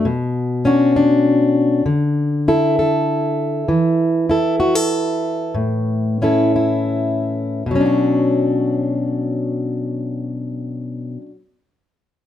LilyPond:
\new Staff \with { instrumentName = "Steel-string acoustic guitar" } { \time 3/4 \key b \minor \tempo 4 = 92 << { r4 <cis' d' fis'>8 d'4. | r4 <e' a'>8 a'4. | r4 <e' a'>8 fis'16 a'4~ a'16 | r4 <cis' e' a'>8 e'4. |
<fis cis' d' fis'>2.~ | <fis cis' d' fis'>2. | } \\ { b,2. | d2. | e2. | a,2. |
b,2.~ | b,2. | } >> }